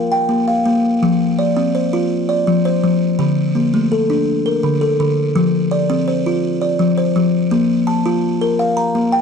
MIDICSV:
0, 0, Header, 1, 2, 480
1, 0, Start_track
1, 0, Key_signature, -2, "major"
1, 0, Tempo, 360577
1, 1362, Time_signature, 12, 3, 24, 8
1, 12268, End_track
2, 0, Start_track
2, 0, Title_t, "Kalimba"
2, 0, Program_c, 0, 108
2, 0, Note_on_c, 0, 70, 77
2, 0, Note_on_c, 0, 77, 64
2, 149, Note_off_c, 0, 77, 0
2, 150, Note_off_c, 0, 70, 0
2, 155, Note_on_c, 0, 79, 68
2, 385, Note_on_c, 0, 58, 77
2, 634, Note_on_c, 0, 77, 72
2, 857, Note_off_c, 0, 58, 0
2, 873, Note_on_c, 0, 58, 82
2, 879, Note_off_c, 0, 79, 0
2, 1358, Note_off_c, 0, 58, 0
2, 1359, Note_off_c, 0, 77, 0
2, 1368, Note_on_c, 0, 53, 88
2, 1845, Note_on_c, 0, 74, 71
2, 1846, Note_off_c, 0, 53, 0
2, 2084, Note_on_c, 0, 60, 78
2, 2326, Note_on_c, 0, 72, 66
2, 2565, Note_off_c, 0, 60, 0
2, 2566, Note_off_c, 0, 74, 0
2, 2572, Note_on_c, 0, 65, 77
2, 3047, Note_off_c, 0, 72, 0
2, 3047, Note_on_c, 0, 74, 68
2, 3050, Note_off_c, 0, 65, 0
2, 3292, Note_on_c, 0, 53, 79
2, 3531, Note_on_c, 0, 72, 69
2, 3759, Note_off_c, 0, 53, 0
2, 3768, Note_off_c, 0, 74, 0
2, 3775, Note_on_c, 0, 53, 79
2, 4245, Note_on_c, 0, 50, 87
2, 4251, Note_off_c, 0, 72, 0
2, 4252, Note_off_c, 0, 53, 0
2, 4727, Note_off_c, 0, 50, 0
2, 4728, Note_on_c, 0, 58, 68
2, 4976, Note_on_c, 0, 57, 75
2, 5214, Note_on_c, 0, 69, 67
2, 5450, Note_off_c, 0, 58, 0
2, 5453, Note_off_c, 0, 57, 0
2, 5456, Note_on_c, 0, 62, 79
2, 5933, Note_off_c, 0, 69, 0
2, 5934, Note_off_c, 0, 62, 0
2, 5934, Note_on_c, 0, 70, 66
2, 6168, Note_on_c, 0, 50, 78
2, 6407, Note_on_c, 0, 69, 69
2, 6640, Note_off_c, 0, 50, 0
2, 6653, Note_off_c, 0, 70, 0
2, 6656, Note_on_c, 0, 50, 81
2, 7129, Note_off_c, 0, 69, 0
2, 7129, Note_on_c, 0, 53, 86
2, 7134, Note_off_c, 0, 50, 0
2, 7607, Note_on_c, 0, 74, 70
2, 7610, Note_off_c, 0, 53, 0
2, 7850, Note_on_c, 0, 60, 81
2, 8089, Note_on_c, 0, 72, 66
2, 8329, Note_off_c, 0, 74, 0
2, 8330, Note_off_c, 0, 60, 0
2, 8338, Note_on_c, 0, 65, 76
2, 8807, Note_on_c, 0, 74, 62
2, 8809, Note_off_c, 0, 72, 0
2, 8814, Note_off_c, 0, 65, 0
2, 9043, Note_on_c, 0, 53, 77
2, 9285, Note_on_c, 0, 72, 66
2, 9514, Note_off_c, 0, 53, 0
2, 9528, Note_off_c, 0, 74, 0
2, 9530, Note_on_c, 0, 53, 81
2, 10002, Note_on_c, 0, 58, 89
2, 10006, Note_off_c, 0, 72, 0
2, 10008, Note_off_c, 0, 53, 0
2, 10477, Note_on_c, 0, 81, 69
2, 10484, Note_off_c, 0, 58, 0
2, 10724, Note_on_c, 0, 65, 82
2, 11200, Note_off_c, 0, 81, 0
2, 11201, Note_on_c, 0, 70, 76
2, 11203, Note_off_c, 0, 65, 0
2, 11439, Note_on_c, 0, 77, 68
2, 11672, Note_on_c, 0, 82, 67
2, 11681, Note_off_c, 0, 70, 0
2, 11915, Note_on_c, 0, 58, 74
2, 12146, Note_on_c, 0, 79, 72
2, 12159, Note_off_c, 0, 77, 0
2, 12268, Note_off_c, 0, 58, 0
2, 12268, Note_off_c, 0, 79, 0
2, 12268, Note_off_c, 0, 82, 0
2, 12268, End_track
0, 0, End_of_file